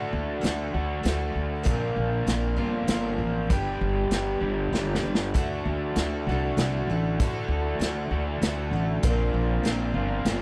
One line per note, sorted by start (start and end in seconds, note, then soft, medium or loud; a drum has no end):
0.00 0.10 A2 medium
0.00 0.42 D3 medium
0.00 0.72 D3 medium
0.00 0.40 A3 medium
0.00 0.73 A3 loud
0.00 0.75 D4 loud
0.00 0.40 E4 medium
0.00 0.42 F#4 medium
0.00 0.73 F#4 medium
0.00 0.42 A4 medium
0.13 0.41 D2 medium
0.41 0.72 D2 medium
0.41 1.02 A3 medium
0.41 1.02 E4 medium
0.41 1.03 F#4 medium
0.41 1.04 A4 medium
0.41 snare medium
0.41 closed hi-hat medium
0.74 1.03 D2 medium
0.74 1.66 D3 medium
0.74 1.66 A3 medium
0.74 1.67 D4 medium
0.74 1.65 F#4 medium
1.03 1.33 D2 medium
1.03 1.64 A3 medium
1.03 1.65 E4 medium
1.03 1.65 F#4 medium
1.03 1.65 A4 medium
1.03 snare medium
1.03 closed hi-hat medium
1.35 1.64 D2 medium
1.63 1.94 A#1 medium
1.63 2.27 A#2 medium
1.63 2.57 A#2 loud
1.63 2.27 D3 medium
1.63 2.57 F3 medium
1.63 2.25 A#3 medium
1.63 2.58 A#3 loud
1.63 2.27 C4 medium
1.63 2.59 D4 loud
1.63 2.27 F4 medium
1.63 2.57 F4 loud
1.63 2.28 A#4 medium
1.63 kick loud
1.63 closed hi-hat medium
1.96 2.25 A#1 medium
2.27 2.56 A#1 medium
2.27 2.57 A#3 medium
2.27 2.56 C4 medium
2.27 2.55 F4 medium
2.27 2.55 A#4 medium
2.27 snare medium
2.27 closed hi-hat medium
2.56 2.86 G1 medium
2.56 3.50 F3 medium
2.56 2.86 A#3 soft
2.56 3.50 A#3 medium
2.56 2.88 C4 soft
2.56 3.51 D4 medium
2.56 2.88 F4 soft
2.56 3.49 F4 medium
2.56 2.89 A#4 medium
2.61 3.49 A#2 medium
2.87 3.17 G1 medium
2.87 3.50 A#3 medium
2.87 3.50 C4 medium
2.87 3.51 F4 medium
2.87 3.52 A#4 medium
2.87 snare medium
2.87 closed hi-hat medium
3.18 3.48 A1 medium
3.49 3.79 G1 medium
3.49 4.41 G2 medium
3.49 4.41 D3 medium
3.49 4.41 G3 loud
3.49 4.10 G3 medium
3.49 4.41 B3 medium
3.49 4.11 D4 medium
3.49 4.41 D4 loud
3.49 4.11 G4 medium
3.49 4.39 G4 medium
3.49 4.12 B4 medium
3.49 kick loud
3.49 closed hi-hat medium
3.81 4.10 G1 medium
4.11 4.40 G1 medium
4.11 4.72 G3 medium
4.11 4.73 D4 medium
4.11 4.74 G4 medium
4.11 4.74 B4 medium
4.11 snare medium
4.11 closed hi-hat medium
4.41 4.71 G1 medium
4.41 5.34 G2 medium
4.41 5.33 D3 medium
4.41 5.34 G3 medium
4.41 5.34 B3 medium
4.41 5.36 D4 medium
4.41 5.33 G4 medium
4.72 5.02 G1 medium
4.72 5.05 G3 medium
4.72 5.04 D4 medium
4.72 5.05 G4 medium
4.72 5.02 B4 medium
4.72 snare medium
4.95 snare medium
5.03 5.32 G1 medium
5.03 5.35 D4 soft
5.03 5.36 G4 soft
5.03 5.35 B4 soft
5.15 snare medium
5.34 5.63 D2 medium
5.34 6.30 D3 medium
5.34 6.01 D3 medium
5.34 5.96 A3 medium
5.34 6.29 A3 loud
5.34 6.29 D4 medium
5.34 9.00 D4 medium
5.34 5.97 E4 medium
5.34 9.00 E4 medium
5.34 5.98 F#4 medium
5.34 9.00 F#4 medium
5.34 6.27 F#4 loud
5.34 9.00 A4 medium
5.34 5.98 A4 medium
5.34 kick loud
5.34 closed hi-hat medium
5.65 5.94 D2 medium
5.96 6.25 D2 medium
5.96 6.28 A3 medium
5.96 6.29 E4 medium
5.96 snare medium
5.96 closed hi-hat medium
6.00 6.28 F#4 medium
6.00 6.28 A4 medium
6.27 6.55 C2 medium
6.27 7.19 A3 medium
6.27 7.22 D4 medium
6.27 7.18 F#4 medium
6.27 6.58 F#4 soft
6.27 6.59 A4 soft
6.31 7.20 D3 medium
6.31 6.58 E4 soft
6.57 6.86 C2 medium
6.57 6.89 A3 medium
6.57 6.90 E4 medium
6.57 6.89 F#4 medium
6.57 6.88 A4 medium
6.57 snare medium
6.57 closed hi-hat medium
6.87 7.16 A1 medium
6.87 7.20 F#4 soft
6.87 7.20 A4 medium
6.91 7.20 E4 soft
7.19 7.48 A2 medium
7.19 7.82 D3 medium
7.19 8.11 D3 medium
7.19 7.78 A3 medium
7.19 8.11 A3 medium
7.19 8.12 D4 loud
7.19 7.80 E4 medium
7.19 7.80 F#4 medium
7.19 7.81 A4 loud
7.19 kick loud
7.19 closed hi-hat medium
7.23 8.11 F#4 medium
7.48 7.77 D2 medium
7.79 8.08 D2 medium
7.79 8.40 A3 medium
7.79 8.41 E4 medium
7.79 8.42 F#4 medium
7.79 8.43 A4 medium
7.79 snare medium
7.79 closed hi-hat medium
8.11 8.39 D2 medium
8.11 9.04 D3 medium
8.11 9.03 A3 medium
8.11 9.05 D4 medium
8.11 9.02 F#4 medium
8.42 8.70 D2 medium
8.42 8.73 A3 medium
8.42 8.73 E4 medium
8.42 8.72 F#4 medium
8.42 8.72 A4 medium
8.42 snare medium
8.42 closed hi-hat medium
8.71 9.00 A1 medium
8.71 9.04 F#4 soft
8.71 9.04 A4 medium
8.76 9.04 E4 soft
9.03 9.31 A#1 medium
9.03 9.65 A#2 medium
9.03 9.94 A#2 loud
9.03 9.65 D3 medium
9.03 9.94 F3 medium
9.03 9.62 A#3 medium
9.03 9.94 A#3 loud
9.03 10.42 C4 medium
9.03 9.64 C4 medium
9.03 10.42 D4 medium
9.03 9.96 D4 loud
9.03 9.64 F4 loud
9.03 10.42 F4 medium
9.03 9.94 F4 loud
9.03 10.42 A#4 medium
9.03 9.65 C5 medium
9.03 kick loud
9.03 closed hi-hat medium
9.34 9.62 A#1 medium
9.63 9.92 A#1 medium
9.63 10.24 A#3 medium
9.63 10.25 C4 medium
9.63 10.26 F4 medium
9.63 10.26 C5 medium
9.63 snare medium
9.63 closed hi-hat medium
9.94 10.23 G1 medium
9.94 10.42 A#2 medium
9.94 10.42 F3 medium
9.94 10.42 A#3 medium
9.94 10.42 D4 medium
9.94 10.42 F4 medium
10.25 10.42 G1 medium
10.25 10.42 A#3 medium
10.25 10.42 C4 medium
10.25 10.42 F4 medium
10.25 10.42 C5 medium
10.25 snare medium
10.25 closed hi-hat medium